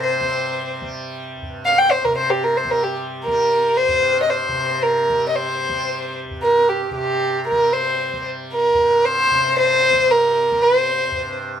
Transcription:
Already playing: G2 C3 G3
0.03 C5
0.21 G3
0.82 G3
1.42 G2
1.66 F5
1.78 G5
1.91 C5
2.04 C3 A#4
2.18 C5
2.30 G4
2.44 A#4
2.57 C5
2.65 G3
2.71 A#4
2.84 G4
3.25 G3 A#4
3.77 C5
3.88 G2
4.23 D#5
4.30 C5
4.48 C3
4.83 A#4
5.10 G3
5.29 D#5
5.36 C5
5.69 G3
6.30 G2
6.43 A#4
6.69 G4
6.91 C3
6.95 G4
7.48 A#4
7.52 G3
7.73 C5
8.13 G3
8.53 A#4
8.74 G2
9.05 C5
9.31 C3
9.59 C5
9.93 G3
10.11 A#4
10.52 G3
10.62 C5
11.11 G2

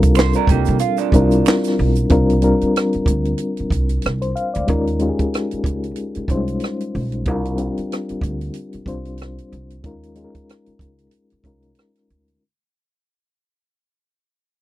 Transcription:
Already playing: C2 G3 C4 D4 F4 G4 A4 A#4
0.03 kick, closed hi-hat, shaker
0.15 C5, finger snap, snare, shaker
0.20 clap
0.33 D4 A#4, closed hi-hat, shaker
0.47 C2 A#3 G4, kick, closed hi-hat
0.65 C3, closed hi-hat, shaker
0.79 F4, closed hi-hat, shaker
0.97 F3 D4, closed hi-hat, shaker
1.12 C2 G3 C4 D4 E4 A#4, kick, closed hi-hat, shaker
1.21 F4
1.31 closed hi-hat, shaker
1.46 finger snap, snare, clap, shaker
1.64 snare, closed hi-hat, shaker
1.79 B1, open hi-hat
1.96 closed hi-hat, shaker
2.09 C2 G3 C4 D4 F4 A#4, kick, closed hi-hat
2.30 closed hi-hat
2.41 G3 C4 D4 F4 A#4, closed hi-hat
2.61 muted upright bass stroke, closed hi-hat
2.76 cross-stick, closed hi-hat
2.93 muted upright bass stroke, closed hi-hat
3.06 D2, kick, closed hi-hat
3.25 closed hi-hat
3.38 closed hi-hat
3.57 muted upright bass stroke, closed hi-hat
3.70 C2, kick, closed hi-hat
3.89 closed hi-hat
4.02 C2, closed hi-hat
4.06 cross-stick
4.22 C5, closed hi-hat
4.36 F5, closed hi-hat
4.54 D2 D5, closed hi-hat
4.67 D#2 G#3 C#4 D#4 F4 A#4, kick, closed hi-hat
4.87 closed hi-hat
4.99 G#3 C#4 D#4 F4 G4, closed hi-hat
5.09 G#4
5.19 muted upright bass stroke, kick, closed hi-hat
5.34 cross-stick, closed hi-hat
5.51 muted upright bass stroke, closed hi-hat
5.64 C#2, kick, closed hi-hat
5.84 closed hi-hat
5.96 closed hi-hat
6.15 muted upright bass stroke, closed hi-hat
6.28 C2 G3 C#4 D#4 F4 C5, kick, closed hi-hat
6.35 G#3
6.48 closed hi-hat
6.60 closed hi-hat
6.64 cross-stick
6.80 closed hi-hat
6.95 B1, open hi-hat
7.12 closed hi-hat
7.25 C2 G3 C4 D4 F4 A#4, kick, closed hi-hat
7.45 closed hi-hat
7.56 G3 C4 D4 F4 G4, closed hi-hat
7.78 muted upright bass stroke, closed hi-hat
7.92 cross-stick, closed hi-hat
8.09 muted upright bass stroke, closed hi-hat
8.21 D2, kick, closed hi-hat
8.41 closed hi-hat
8.54 closed hi-hat
8.73 muted upright bass stroke, closed hi-hat
8.86 C2 G3 C4 D4 F4 C5, kick, closed hi-hat
9.05 closed hi-hat
9.18 closed hi-hat
9.22 cross-stick
9.38 closed hi-hat
9.52 C2, closed hi-hat
9.70 closed hi-hat
9.83 D#2 G#3 C#4 D#4 F4 A#4, kick, closed hi-hat
10.03 closed hi-hat
10.15 G#3 C#4 D#4 F4 G#4, closed hi-hat
10.24 A#4
10.35 muted upright bass stroke, kick, closed hi-hat
10.49 cross-stick, closed hi-hat
10.66 muted upright bass stroke, closed hi-hat
10.79 C#2, kick, closed hi-hat
10.98 closed hi-hat
11.11 closed hi-hat
11.30 muted upright bass stroke, closed hi-hat
11.44 C2 G#3 C#4 D#4 F4 A#4, kick, closed hi-hat
11.62 closed hi-hat
11.75 closed hi-hat
11.79 cross-stick
11.95 cross-stick, closed hi-hat
12.10 D2, closed hi-hat
12.28 closed hi-hat

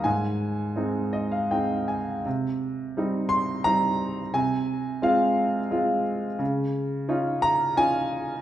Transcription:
0.04 G#2 G#5
0.76 G#3 C4 D#4
1.13 D#5
1.32 F5
1.51 G#3 C4 D#4 G5
1.88 G#5
2.26 C3
2.97 G3 C4 D#4
3.29 C6
3.64 G3 C4 D#4 A#5
4.34 C3 G#5
5.02 G#3 C4 F4 F5
5.71 G#3 C4 F4
6.39 C#3
7.09 C#4 D#4 F4
7.42 A#5
7.77 C#4 D#4 F4 G#5

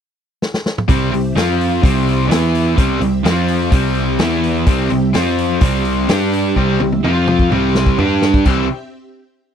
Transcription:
0.42 snare
0.54 snare
0.66 snare
0.78 mid tom
0.88 C2 C3 G3 C4 G4 E5, kick, open hi-hat
1.12 C2 C3 G3, open hi-hat
1.36 F2 F3 C4 F4 F5, snare, open hi-hat
1.40 F4
1.61 open hi-hat
1.83 C2 C3 G3 C4 G4 E5, kick, open hi-hat
2.09 open hi-hat
2.29 E2 E3 B3 E4 E5, snare, open hi-hat
2.55 open hi-hat
2.78 C2 C3 G3 C4 G4 E5, kick, open hi-hat
3.01 C2 C3 G3, open hi-hat
3.24 F2 F3 C4 F4 F5, snare, open hi-hat
3.48 open hi-hat
3.71 C2 C3 G3 C4 G4 E5, kick, open hi-hat
3.95 open hi-hat
4.19 E2 E3 B3 E4 E5, snare, open hi-hat
4.44 open hi-hat
4.66 C2 C3 G3 C4 G4 E5, kick, open hi-hat
4.90 C2 C3 G3, open hi-hat
5.13 F2 F3 C4 F4 F5, snare, open hi-hat
5.39 open hi-hat
5.61 C2 C3 G3 C4 G4 E5, kick, open hi-hat
5.85 open hi-hat
6.07 G2 G3 D4 G4 G5, snare, open hi-hat
6.33 open hi-hat
6.56 C2 C3 G3 C4 G4 E5, kick
6.80 C2 C3 G3, high tom
6.92 high tom
7.04 F2 F3 C4 F4 F5, mid tom
7.28 mid tom
7.39 kick
7.51 C2 C3 G3 C4 G4 E5, mid tom
7.75 snare
7.86 kick
7.98 G2 G3 D4 G4 G5, floor tom
8.22 snare
8.34 kick
8.45 C2 C3 E3 G3 C4 E4 G4 E5, kick, crash

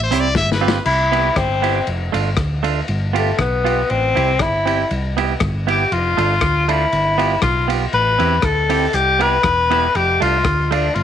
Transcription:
Already playing: A1
0.04 C5
0.11 C2 C4 E4 G4, closed hi-hat
0.20 D5
0.35 G1 E5, kick, snare
0.52 B4, snare
0.61 C4 F4 G4
0.68 snare
0.85 C2 E4, crash
1.12 B3 E4 G4, ride
1.35 G1 C4, muted clean electric guitar stroke, kick, cross-stick, ride
1.62 B3 E4 G4, ride
1.87 F1, ride
2.12 G1 A3 D4 F4, ride
2.37 D2, kick, cross-stick, ride
2.63 A3 D4 F4, ride
2.88 G1, ride
3.13 B3 F4 G4, ride
3.18 A3
3.37 B1 B3, muted clean electric guitar stroke, kick, cross-stick, ride
3.64 B3 F4 G4, ride
3.90 A1 C4, ride
4.15 C2 C4 E4 G4, ride
4.39 G1 E4, kick, cross-stick, ride
4.66 C4 E4 G4, ride
4.91 C2, ride
5.17 B3 E4 G4, ride
5.40 G1, muted clean electric guitar stroke, kick, cross-stick, ride
5.67 B3 E4 G4, ride
5.91 F1 F4, ride
6.17 G1 A3 D4 F4, ride
6.41 D2, kick, cross-stick, ride
6.68 A3 D4 E4 F4, ride
6.93 G1, ride
7.18 B3 F4 G4, ride
7.42 B1 F4, muted clean electric guitar stroke, kick, cross-stick, ride
7.68 B3 F4 G4, ride
7.93 A1 B4, ride
8.19 E2 C4 E4 G4, ride
8.42 D2 A4, kick, cross-stick, ride
8.70 C4 E4 G4, open hi-hat, ride
8.93 C2 G4, hi-hat pedal, ride
9.19 B3 E4 G4 B4, ride
9.43 E1, muted clean electric guitar stroke, kick, cross-stick, ride
9.70 B3 E4 G4, ride
9.95 F1 G4, ride
10.20 C2 A3 D4 F4, ride
10.45 D2, kick, cross-stick, ride
10.71 A3 D4 F4, ride
10.95 G1 F4, ride

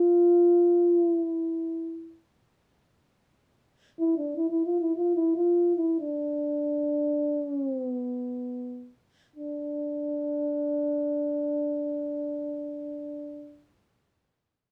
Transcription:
Already playing: F4
1.11 E4
3.99 E4
4.17 D4
4.36 E4
4.50 E4
4.65 F4
4.81 E4
4.96 F4
5.16 E4
5.36 F4
5.77 E4
6.00 D4
7.43 C#4
7.67 C4
7.92 B3
9.36 D4

